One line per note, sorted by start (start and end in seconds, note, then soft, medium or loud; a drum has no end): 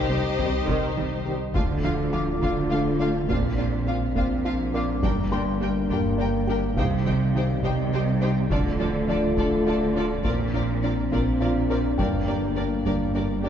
0.00 1.54 C2 medium
0.00 1.32 D#4 medium
0.00 1.36 G4 medium
0.00 1.32 C5 medium
0.00 1.26 D#5 medium
0.00 1.57 G6 medium
0.10 0.18 C2 soft
0.10 0.18 C3 soft
0.10 0.18 G3 soft
0.10 0.27 C4 medium
0.39 0.47 C2 soft
0.39 0.47 C3 soft
0.39 0.49 D#3 medium
0.39 0.50 G3 medium
0.39 0.57 C4 medium
0.39 0.47 C4 soft
0.39 0.50 C4 medium
0.39 0.50 G4 medium
0.39 taiko low medium
0.68 0.76 C2 medium
0.68 0.85 C3 medium
0.68 0.76 C3 medium
0.68 0.95 D#3 medium
0.68 taiko medium
0.97 1.05 C2 soft
0.97 1.05 C3 medium
0.97 1.15 D#3 medium
0.97 1.05 G3 soft
1.25 1.37 D#3 soft
1.25 1.36 G3 medium
1.25 1.36 C4 soft
1.25 1.36 G4 medium
1.54 3.30 D1 medium
1.54 2.32 D2 medium
1.54 1.73 D3 medium
1.54 2.32 D3 medium
1.54 3.24 A3 medium
1.54 1.63 A3 soft
1.54 1.64 D4 soft
1.54 3.24 F4 medium
1.54 1.63 F4 medium
1.54 1.63 F5 soft
1.54 taiko medium
1.84 2.02 F3 medium
1.84 1.92 A3 soft
1.84 1.92 D4 soft
1.84 1.92 F4 soft
1.84 1.92 F5 soft
2.13 2.31 F3 medium
2.13 2.21 A3 soft
2.13 2.21 D4 soft
2.13 2.21 F4 soft
2.13 2.21 F5 soft
2.13 3.83 D6 soft
2.42 3.19 D2 medium
2.42 2.60 D3 medium
2.42 3.19 D3 soft
2.42 2.50 A3 soft
2.42 2.51 D4 soft
2.42 2.51 F4 soft
2.42 2.51 F5 soft
2.42 taiko medium
2.71 2.89 A3 medium
2.71 2.80 A3 soft
2.71 2.80 D4 soft
2.71 2.79 F4 soft
2.71 2.79 F5 soft
3.00 3.08 A3 soft
3.00 3.17 D4 medium
3.00 3.09 D4 soft
3.00 3.08 F4 soft
3.00 3.08 F5 soft
3.29 5.04 A#1 medium
3.29 4.06 A#1 medium
3.29 4.06 A#2 medium
3.29 3.46 A#3 medium
3.29 4.99 C4 medium
3.29 3.38 C4 soft
3.29 6.73 D4 medium
3.29 3.38 D4 soft
3.29 3.37 F4 soft
3.29 3.37 F5 soft
3.29 taiko medium
3.57 3.66 C4 soft
3.57 3.66 D4 soft
3.57 3.76 D4 soft
3.57 3.66 F4 soft
3.57 3.65 F5 soft
3.87 3.96 C4 soft
3.87 4.04 D4 soft
3.87 3.95 D4 soft
3.87 3.96 F4 soft
3.87 3.95 F5 soft
4.16 4.93 A#1 medium
4.16 4.93 A#2 medium
4.16 4.33 A#3 medium
4.16 4.24 C4 soft
4.16 4.24 D4 soft
4.16 4.25 F4 soft
4.16 4.25 F5 soft
4.16 taiko medium
4.45 4.53 C4 soft
4.45 4.53 D4 soft
4.45 4.62 F4 medium
4.45 4.53 F4 soft
4.45 4.53 F5 soft
4.74 4.82 C4 soft
4.74 4.82 D4 soft
4.74 4.83 F4 soft
4.74 4.92 A#4 medium
4.74 6.44 D5 soft
4.74 4.83 F5 soft
4.74 6.44 D6 soft
5.02 6.78 G1 medium
5.02 5.80 G1 medium
5.02 5.80 G2 medium
5.02 5.20 G3 medium
5.02 6.73 A#3 medium
5.02 5.10 D4 soft
5.02 5.11 G4 soft
5.02 5.12 A#4 soft
5.02 5.12 G5 medium
5.02 taiko medium
5.31 5.49 A#3 medium
5.31 5.39 D4 soft
5.31 5.39 G4 soft
5.31 5.41 A#4 soft
5.31 5.41 G5 soft
5.31 7.02 C6 soft
5.60 5.78 A#3 medium
5.60 5.68 D4 soft
5.60 5.68 G4 soft
5.60 5.70 A#4 soft
5.60 5.70 G5 soft
5.89 6.67 G1 medium
5.89 6.67 G2 medium
5.89 6.07 G3 medium
5.89 5.97 D4 soft
5.89 5.97 G4 medium
5.89 5.99 A#4 soft
5.89 6.00 G5 soft
5.89 taiko medium
6.18 6.36 D4 medium
6.18 6.26 D4 soft
6.18 6.26 G4 soft
6.18 6.28 A#4 soft
6.18 6.28 G5 soft
6.47 6.55 D4 soft
6.47 6.65 G4 soft
6.47 6.55 G4 soft
6.47 6.58 A#4 soft
6.47 6.57 G5 soft
6.76 7.53 C2 medium
6.76 8.51 C2 medium
6.76 6.94 C3 medium
6.76 7.54 C3 medium
6.76 8.47 G3 medium
6.76 6.84 D#4 soft
6.76 8.47 D#4 medium
6.76 6.85 G4 soft
6.76 6.86 C5 medium
6.76 8.47 F5 soft
6.76 6.86 G5 soft
6.76 taiko medium
7.05 7.23 D#3 medium
7.05 7.14 D#4 soft
7.05 7.14 G4 soft
7.05 7.15 C5 soft
7.05 7.15 G5 soft
7.34 7.52 D#3 medium
7.34 7.43 D#4 soft
7.34 7.43 G4 soft
7.34 7.45 C5 soft
7.34 7.44 G5 soft
7.63 8.41 C2 medium
7.63 7.81 C3 medium
7.63 8.41 C3 medium
7.63 7.71 D#4 soft
7.63 7.71 G4 soft
7.63 7.73 C5 soft
7.63 9.34 D#5 soft
7.63 7.72 G5 soft
7.63 taiko medium
7.92 8.10 G3 medium
7.92 8.01 D#4 soft
7.92 8.01 G4 soft
7.92 8.02 C5 soft
7.92 8.01 G5 soft
8.21 8.39 C4 medium
8.21 8.30 D#4 soft
8.21 8.30 G4 medium
8.21 8.29 C5 soft
8.21 8.30 G5 soft
8.50 10.26 D1 medium
8.50 9.27 D2 medium
8.50 8.68 D3 medium
8.50 9.27 D3 medium
8.50 10.08 A3 medium
8.50 8.58 D4 medium
8.50 8.58 F4 soft
8.50 10.08 F4 medium
8.50 8.59 A4 medium
8.50 8.59 D5 medium
8.50 taiko medium
8.79 8.97 F3 medium
8.79 8.87 D4 soft
8.79 8.87 F4 soft
8.79 8.88 A4 soft
8.79 8.88 D5 soft
9.08 9.26 F3 medium
9.08 9.16 D4 soft
9.08 9.16 F4 soft
9.08 9.17 A4 soft
9.08 9.17 D5 soft
9.08 10.79 D5 medium
9.37 10.14 D2 medium
9.37 10.14 D3 medium
9.37 9.55 D3 medium
9.37 9.45 D4 soft
9.37 9.45 F4 medium
9.37 9.46 A4 medium
9.37 9.46 D5 medium
9.37 taiko medium
9.66 9.84 A3 medium
9.66 9.74 D4 soft
9.66 9.74 F4 soft
9.66 9.75 A4 medium
9.66 9.76 D5 soft
9.95 10.03 D4 soft
9.95 10.13 D4 soft
9.95 10.03 F4 medium
9.95 10.04 A4 soft
9.95 10.04 D5 medium
10.24 12.00 A#1 medium
10.24 11.02 A#1 medium
10.24 11.02 A#2 medium
10.24 10.42 A#3 medium
10.24 10.32 C4 medium
10.24 11.95 C4 medium
10.24 13.49 D4 medium
10.24 10.32 F4 medium
10.24 10.33 A#4 medium
10.24 10.33 D5 medium
10.24 taiko medium
10.54 10.62 C4 soft
10.54 10.71 D4 medium
10.54 10.62 F4 soft
10.54 10.63 A#4 soft
10.54 10.63 D5 medium
10.83 10.92 C4 soft
10.83 11.01 D4 soft
10.83 10.91 F4 soft
10.83 10.92 A#4 soft
10.83 10.92 D5 soft
11.11 11.88 A#1 medium
11.11 11.88 A#2 medium
11.11 11.30 A#3 medium
11.11 11.19 C4 medium
11.11 11.19 F4 soft
11.11 11.21 A#4 soft
11.11 11.21 D5 soft
11.11 taiko medium
11.40 11.49 C4 soft
11.40 13.10 F4 soft
11.40 11.59 F4 medium
11.40 11.49 F4 soft
11.40 11.49 A#4 medium
11.40 11.49 D5 soft
11.40 13.10 F5 soft
11.70 11.78 C4 medium
11.70 11.78 F4 medium
11.70 11.87 A#4 soft
11.70 11.78 A#4 soft
11.70 11.78 D5 soft
11.98 13.49 G1 medium
11.98 12.75 G1 medium
11.98 12.75 G2 medium
11.98 12.16 G3 medium
11.98 13.49 A#3 medium
11.98 12.07 D4 medium
11.98 12.07 G4 medium
11.98 12.07 A#4 medium
11.98 12.08 D5 medium
11.98 13.49 G5 soft
11.98 taiko medium
12.27 12.45 A#3 medium
12.27 12.35 D4 soft
12.27 12.35 G4 soft
12.27 12.36 A#4 soft
12.27 12.35 D5 soft
12.56 12.74 A#3 medium
12.56 12.65 D4 soft
12.56 12.65 G4 soft
12.56 12.65 A#4 soft
12.56 12.64 D5 soft
12.85 13.49 G1 medium
12.85 13.49 G2 soft
12.85 13.03 G3 medium
12.85 12.94 D4 soft
12.85 12.94 G4 soft
12.85 12.94 A#4 soft
12.85 12.94 D5 soft
12.85 taiko medium
13.15 13.32 D4 medium
13.15 13.23 D4 soft
13.15 13.23 G4 soft
13.15 13.23 A#4 soft
13.15 13.23 D5 soft
13.43 13.49 D4 soft
13.43 13.49 G4 soft
13.43 13.49 A#4 soft
13.43 13.49 D5 soft